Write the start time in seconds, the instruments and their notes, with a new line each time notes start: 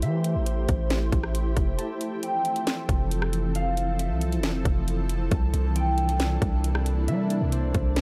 Already playing: ambient pad A3 E4 G4 C5, harp G5
0.02 808-style bass E3, harp E5, closed hi-hat
0.24 closed hi-hat
0.35 808-style bass A1
0.46 harp C5, closed hi-hat
0.69 808-style bass A1, kick, closed hi-hat
0.90 snare, closed hi-hat
1.12 808-style bass A1, kick, closed hi-hat
1.24 cross-stick
1.35 closed hi-hat
1.57 808-style bass F1, kick, closed hi-hat
1.78 ambient pad E3 F3 C4 A4, harp A5, closed hi-hat
2.01 closed hi-hat
2.23 harp G5, closed hi-hat
2.45 closed hi-hat
2.56 closed hi-hat
2.67 snare, closed hi-hat
2.89 808-style bass F1, kick, closed hi-hat
3.11 closed hi-hat
3.22 cross-stick
3.33 closed hi-hat
3.55 harp F5, closed hi-hat
3.77 closed hi-hat
3.99 harp E5, closed hi-hat
4.10 808-style bass C2
4.21 closed hi-hat
4.32 closed hi-hat
4.38 808-style bass F1
4.43 snare, closed hi-hat
4.65 808-style bass F1, kick, closed hi-hat
4.88 closed hi-hat
5.09 closed hi-hat
5.31 808-style bass C2, ambient pad C3 A#3 D4, harp A5, kick, closed hi-hat
5.54 808-style bass C2, closed hi-hat
5.76 harp G5, closed hi-hat
5.98 closed hi-hat
6.09 closed hi-hat
6.20 snare, closed hi-hat
6.42 808-style bass C2, kick, closed hi-hat
6.64 closed hi-hat
6.75 cross-stick
6.86 closed hi-hat
7.08 808-style bass G3, harp E5, closed hi-hat
7.30 closed hi-hat
7.41 808-style bass C2
7.52 harp C5, closed hi-hat
7.74 808-style bass C2, kick, closed hi-hat
7.96 snare, closed hi-hat